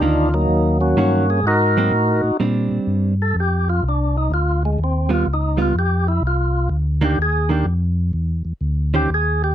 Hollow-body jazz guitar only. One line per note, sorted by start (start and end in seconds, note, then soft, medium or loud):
0.01 0.29 D#3 medium
0.01 0.30 A#3 medium
0.01 0.30 D4 medium
0.97 1.25 D#3 medium
0.97 1.25 A#3 medium
0.97 1.25 C#4 medium
0.97 1.26 F#4 medium
1.77 1.91 F#3 medium
1.77 1.91 A#3 medium
1.77 1.91 C4 medium
2.40 3.13 G3 medium
2.40 3.13 C4 medium
2.40 3.13 D4 medium
5.09 5.25 G3 medium
5.09 5.25 B3 medium
5.09 5.25 F4 medium
5.57 5.72 G3 medium
5.57 5.73 B3 medium
5.57 5.73 F4 medium
7.01 7.16 D#3 medium
7.01 7.16 A#3 medium
7.01 7.17 D4 medium
7.49 7.64 D#3 medium
7.49 7.65 A#3 medium
7.49 7.65 D4 medium
8.94 9.08 D#3 medium
8.94 9.08 C#4 medium
8.94 9.08 G4 medium
8.94 9.08 C5 medium